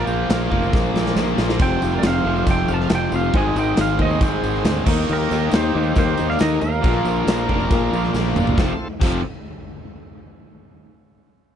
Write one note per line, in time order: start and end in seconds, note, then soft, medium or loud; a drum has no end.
0.00 0.49 A#2 medium
0.00 0.51 F3 medium
0.00 0.49 A#3 medium
0.00 1.60 A#3 medium
0.00 1.60 D4 medium
0.00 1.57 F4 medium
0.00 1.60 A#4 medium
0.05 0.25 A#1 medium
0.05 0.67 F4 medium
0.05 0.68 C5 medium
0.05 tambourine medium
0.29 0.47 A#1 medium
0.29 snare loud
0.29 tambourine medium
0.29 crash medium
0.50 0.69 F1 medium
0.50 1.14 A#2 medium
0.50 1.15 F3 medium
0.50 1.15 A#3 medium
0.50 kick medium
0.63 tambourine soft
0.73 0.91 A#1 loud
0.73 kick loud
0.73 snare medium
0.73 tambourine medium
0.85 tambourine soft
0.94 1.12 A#1 medium
0.94 snare medium
0.94 tambourine medium
1.06 snare medium
1.15 1.34 A#1 loud
1.15 1.58 A#2 medium
1.15 1.59 F3 medium
1.15 1.60 A#3 medium
1.15 snare medium
1.15 tambourine medium
1.28 tambourine soft
1.38 1.56 A#1 medium
1.38 1.60 A#2 medium
1.38 1.59 F3 medium
1.38 1.58 A#3 medium
1.38 snare loud
1.38 tambourine medium
1.49 snare medium
1.49 tambourine soft
1.57 1.78 F1 loud
1.57 2.23 F2 medium
1.57 2.23 C3 loud
1.57 2.24 F3 loud
1.57 3.30 C4 medium
1.57 1.78 C4 loud
1.57 3.31 F4 medium
1.57 1.78 F4 medium
1.57 3.32 A4 medium
1.57 3.31 C5 medium
1.57 1.94 C5 medium
1.57 kick loud
1.57 crash medium
1.62 1.78 A4 medium
1.62 1.78 C5 loud
1.62 1.99 G5 loud
1.82 2.00 F1 medium
1.82 1.99 C4 medium
1.82 1.99 F4 medium
1.82 1.99 A4 medium
1.82 2.00 C5 medium
1.82 tambourine medium
1.92 2.02 A#4 medium
1.92 tambourine soft
1.99 2.04 D5 medium
2.03 2.21 F1 medium
2.03 2.21 C4 medium
2.03 2.21 F4 medium
2.03 2.21 A4 medium
2.03 2.21 C5 medium
2.03 2.45 C5 medium
2.03 2.50 F5 loud
2.03 snare loud
2.03 tambourine loud
2.03 crash medium
2.14 tambourine soft
2.24 2.43 F1 medium
2.24 2.88 F2 medium
2.24 2.89 C3 medium
2.24 2.89 F3 medium
2.24 2.43 C4 medium
2.24 2.43 F4 medium
2.24 2.43 A4 medium
2.24 2.43 C5 medium
2.37 tambourine soft
2.46 2.64 F1 loud
2.46 2.64 C4 loud
2.46 2.64 F4 medium
2.46 2.65 A4 medium
2.46 2.67 C5 medium
2.46 2.65 C5 loud
2.46 kick loud
2.46 tambourine medium
2.46 crash medium
2.51 2.71 G5 loud
2.68 2.86 F1 medium
2.68 2.86 C4 medium
2.68 2.87 F4 medium
2.68 2.86 A4 medium
2.68 2.86 C5 medium
2.68 2.89 F5 medium
2.68 tambourine medium
2.74 2.94 A5 loud
2.80 snare soft
2.89 3.08 F1 medium
2.89 3.32 F2 medium
2.89 3.33 C3 medium
2.89 3.33 F3 medium
2.89 3.08 C4 medium
2.89 3.09 F4 medium
2.89 3.09 A4 medium
2.89 3.09 C5 medium
2.89 3.12 C5 medium
2.89 snare loud
2.89 tambourine loud
2.89 crash medium
2.95 3.15 G5 loud
3.12 3.30 F1 medium
3.12 3.33 F2 medium
3.12 3.34 C3 medium
3.12 3.33 F3 medium
3.12 3.30 C4 medium
3.12 3.30 F4 medium
3.12 3.30 A4 medium
3.12 3.30 C5 medium
3.12 tambourine medium
3.16 3.35 C5 medium
3.16 3.36 F5 medium
3.24 tambourine soft
3.31 3.52 G#1 loud
3.31 3.98 G#2 medium
3.31 3.98 D#3 medium
3.31 4.84 C4 medium
3.31 3.52 C4 loud
3.31 4.84 D#4 medium
3.31 3.52 D#4 medium
3.31 4.84 G#4 medium
3.31 3.52 G#4 medium
3.31 4.84 C5 medium
3.31 3.52 C5 loud
3.31 kick loud
3.31 crash medium
3.36 3.96 G#3 loud
3.36 3.56 D#5 loud
3.36 3.58 G#5 loud
3.55 3.74 G#1 medium
3.55 3.73 C4 medium
3.55 3.73 D#4 medium
3.55 3.74 G#4 medium
3.55 3.74 C5 medium
3.55 3.77 D#5 medium
3.55 3.80 G5 medium
3.55 tambourine medium
3.68 tambourine soft
3.77 3.96 G#1 medium
3.77 3.95 C4 medium
3.77 3.96 D#4 medium
3.77 3.95 G#4 medium
3.77 3.96 A#4 medium
3.77 3.99 C5 medium
3.77 snare loud
3.77 tambourine loud
3.77 crash medium
3.81 4.01 F5 loud
3.90 tambourine soft
3.97 4.17 D#2 medium
3.97 4.62 G#2 medium
3.97 4.63 D#3 medium
3.97 4.63 G#3 loud
3.97 4.17 C4 medium
3.97 4.16 D#4 medium
3.97 4.17 G#4 medium
3.97 4.17 C5 medium
3.97 kick medium
4.02 4.22 C5 medium
4.02 4.23 D#5 medium
4.10 tambourine soft
4.21 4.39 G#1 loud
4.21 4.38 C4 loud
4.21 4.39 D#4 medium
4.21 4.39 G#4 medium
4.21 4.84 G#4 medium
4.21 4.39 C5 loud
4.21 4.83 C5 medium
4.21 kick loud
4.21 tambourine medium
4.21 crash medium
4.43 4.61 G#1 medium
4.43 4.61 C4 medium
4.43 4.61 D#4 medium
4.43 4.61 G#4 medium
4.43 4.61 C5 medium
4.43 tambourine medium
4.55 snare soft
4.64 4.83 D2 loud
4.64 4.85 G#2 medium
4.64 4.83 D#3 medium
4.64 4.86 G#3 medium
4.64 4.82 C4 medium
4.64 4.82 D#4 medium
4.64 4.83 G#4 medium
4.64 4.83 C5 medium
4.64 snare loud
4.64 tambourine loud
4.64 crash medium
4.85 5.04 D#2 loud
4.85 5.50 D#3 loud
4.85 6.81 A#3 medium
4.85 5.52 A#3 loud
4.85 5.22 A#3 loud
4.85 5.21 D#4 medium
4.85 6.81 D#4 medium
4.85 5.51 D#4 loud
4.85 6.81 G4 medium
4.85 5.22 G4 medium
4.85 6.80 A#4 medium
4.85 5.22 A#4 loud
4.85 kick loud
4.85 tambourine medium
4.85 crash loud
4.98 tambourine soft
5.09 5.27 D#2 loud
5.09 5.51 G4 medium
5.09 5.56 A#4 loud
5.09 crash medium
5.31 5.49 D#2 loud
5.31 5.49 A#3 medium
5.31 5.49 D#4 medium
5.31 5.49 G4 medium
5.31 5.49 A#4 medium
5.31 tambourine medium
5.51 5.70 D#2 medium
5.51 6.16 D#3 medium
5.51 6.17 A#3 medium
5.51 5.70 A#3 medium
5.51 5.70 D#4 medium
5.51 6.16 D#4 medium
5.51 5.70 G4 medium
5.51 5.70 A#4 medium
5.51 snare loud
5.51 tambourine loud
5.51 crash medium
5.55 5.95 G4 medium
5.55 5.98 C5 loud
5.74 5.93 D#2 medium
5.74 5.92 A#3 medium
5.74 5.92 D#4 medium
5.74 5.92 G4 medium
5.74 5.92 A#4 medium
5.84 tambourine soft
5.95 6.14 D#2 loud
5.95 6.13 A#3 loud
5.95 6.14 D#4 medium
5.95 6.26 G4 medium
5.95 6.14 G4 medium
5.95 6.14 A#4 loud
5.95 6.28 C5 loud
5.95 kick loud
5.95 tambourine medium
5.95 crash medium
6.17 6.37 D#2 medium
6.17 6.61 D#3 medium
6.17 6.60 A#3 medium
6.17 6.36 A#3 medium
6.17 6.60 D#4 medium
6.17 6.36 D#4 medium
6.17 6.36 G4 medium
6.17 6.36 A#4 medium
6.17 tambourine medium
6.28 6.39 D5 medium
6.28 6.40 F5 loud
6.28 snare soft
6.39 6.58 D#2 loud
6.39 6.61 D#3 medium
6.39 6.57 A#3 medium
6.39 6.61 A#3 medium
6.39 6.57 D#4 medium
6.39 6.57 G4 medium
6.39 6.57 A4 medium
6.39 6.61 A#4 medium
6.39 6.61 D#5 loud
6.39 snare loud
6.39 tambourine loud
6.39 crash medium
6.43 6.62 D#4 medium
6.61 6.80 D#2 medium
6.61 6.79 A#3 medium
6.61 6.80 D#4 medium
6.61 6.80 G4 medium
6.61 8.11 A#4 medium
6.61 6.80 A#4 medium
6.61 8.10 F5 loud
6.61 tambourine medium
6.72 tambourine soft
6.81 7.01 A#1 loud
6.81 7.46 A#2 loud
6.81 7.47 F3 medium
6.81 7.46 A#3 medium
6.81 7.01 A#3 loud
6.81 6.98 B3 medium
6.81 7.01 D4 loud
6.81 7.01 F4 medium
6.81 kick loud
6.81 tambourine soft
6.81 crash medium
6.85 6.99 D#4 medium
6.85 6.99 F#4 medium
6.85 7.02 A#4 loud
6.85 6.99 B4 medium
6.98 8.57 A#3 medium
6.98 8.57 D4 medium
6.98 8.56 F4 medium
6.98 8.56 A#4 medium
7.05 7.23 A#1 medium
7.05 7.23 A#3 medium
7.05 7.23 D4 medium
7.05 7.23 F4 medium
7.05 7.23 A#4 medium
7.05 tambourine medium
7.16 tambourine soft
7.27 7.45 A#1 medium
7.27 7.45 A#3 medium
7.27 7.45 D4 medium
7.27 7.45 F4 medium
7.27 7.45 A#4 medium
7.27 snare loud
7.27 tambourine loud
7.27 crash medium
7.47 7.67 F1 medium
7.47 8.12 A#2 medium
7.47 8.13 F3 medium
7.47 8.12 A#3 medium
7.47 7.67 A#3 medium
7.47 7.67 D4 medium
7.47 7.67 F4 medium
7.47 7.67 A#4 loud
7.47 7.70 A5 medium
7.47 kick medium
7.60 tambourine soft
7.71 7.89 A#1 loud
7.71 7.89 A#3 loud
7.71 7.89 D4 loud
7.71 7.89 F4 loud
7.71 7.89 A#4 loud
7.71 8.12 G5 medium
7.71 kick loud
7.71 tambourine medium
7.71 crash medium
7.93 8.11 A#1 medium
7.93 8.11 A#3 medium
7.93 8.11 D4 medium
7.93 8.11 F4 medium
7.93 8.11 C5 loud
7.93 tambourine medium
8.04 snare soft
8.04 tambourine soft
8.13 8.32 A#1 medium
8.13 8.56 A#2 medium
8.13 8.57 F3 medium
8.13 8.32 A#3 medium
8.13 8.57 A#3 loud
8.13 8.32 D4 medium
8.13 8.33 F4 medium
8.13 8.32 A#4 loud
8.13 8.55 F5 medium
8.13 snare medium
8.13 tambourine medium
8.35 8.54 G1 medium
8.35 8.58 A#2 medium
8.35 8.58 F3 medium
8.35 8.57 A#3 loud
8.35 8.54 A#3 medium
8.35 8.54 D4 medium
8.35 8.54 F4 medium
8.35 8.54 A#4 loud
8.35 mid tom loud
8.35 tambourine medium
8.47 floor tom medium
8.56 8.70 F1 loud
8.56 8.71 F2 medium
8.56 8.71 C3 loud
8.56 8.71 F3 loud
8.56 8.88 A3 medium
8.56 8.88 C4 medium
8.56 8.71 C4 medium
8.56 8.88 F4 medium
8.56 8.71 F4 medium
8.56 8.88 A4 medium
8.56 8.71 A4 loud
8.56 kick loud
8.56 snare loud
8.56 tambourine medium
9.00 9.22 F1 loud
9.00 9.18 F2 loud
9.00 9.19 C3 loud
9.00 9.19 F3 loud
9.00 9.23 C4 medium
9.00 9.23 F4 medium
9.00 9.23 A4 medium
9.00 kick loud
9.00 crash medium
9.00 tambourine medium